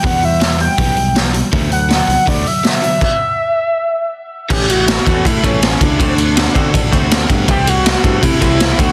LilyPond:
<<
  \new Staff \with { instrumentName = "Analog synth lead" } { \time 4/4 \key d \mixolydian \tempo 4 = 161 fis''8 e''4 g''2 r8 | r8 fis''4. d''8 e''4 e''8~ | e''2. r4 | g'8 fis'4. e'8 cis'4 d'8~ |
d'2~ d'8 r4. | g'8 fis'4. e'8 e'4 fis'8 | }
  \new Staff \with { instrumentName = "Clean electric guitar" } { \time 4/4 \key d \mixolydian r1 | r1 | r1 | <e a cis'>8 <e a>8 <e a>8 <e a cis'>8 <e a>8 <e a cis'>8 <e a>8 <e a>8 |
<a c' fis'>8 <a c'>8 <a c'>8 <a c' fis'>8 <a c'>8 <a c' fis'>8 <a c'>8 <a c'>8 | <e a c'>8 <e a>8 <e a>8 <e a c'>8 <e a>8 <e a c'>8 <e a>8 <a c' fis'>8 | }
  \new Staff \with { instrumentName = "Overdriven electric guitar" } { \clef bass \time 4/4 \key d \mixolydian <e g b>8 <e g>8 <e g>8 <e g>8 <e g b>8 <e g>8 <e g>8 <e g>8 | <d fis a>8 <d fis>8 <d fis>8 <d fis>8 <d fis a>8 <d fis>8 <d fis>8 <d fis>8 | r1 | a,8 g8 e'8 a'8 e'8 g8 cis'8 e'8 |
d8 a8 fis'8 a'8 fis'8 a8 c'8 fis'8 | c8 g8 e'8 a'8 e'8 g8 c'8 d8 | }
  \new Staff \with { instrumentName = "Picked electric bass" } { \clef bass \time 4/4 \key d \mixolydian e,2 b,,2 | d,4. c,16 r16 d,8 r4. | r1 | a,,4. e,8 a,8 a,,4 cis,8 |
d,4. d8 a,,8 d,4 g,8 | c,4. g,8 c8 c,4 d,8 | }
  \new DrumStaff \with { instrumentName = "Drums" } \drummode { \time 4/4 <hho bd>8 hho8 <hho sn>8 hho8 <hho bd>8 hho8 <hho sn>8 hho8 | <hho bd>8 hho8 <hho sn>8 hho8 <hho bd>8 hho8 <hho sn>8 hho8 | <cymc bd>4 r4 r4 r4 | <cymc bd>8 cymr8 <cymr sn>8 <bd cymr>8 <bd cymr>8 <bd cymr>8 <cymr sn>8 <bd cymr>8 |
<bd cymr>8 cymr8 <cymr sn>8 <bd cymr>8 <bd cymr>8 <bd cymr>8 <cymr sn>8 <bd cymr>8 | <bd cymr>8 cymr8 <cymr sn>8 <bd cymr>8 <bd cymr>8 <bd cymr>8 <cymr sn>8 <bd cymr>8 | }
>>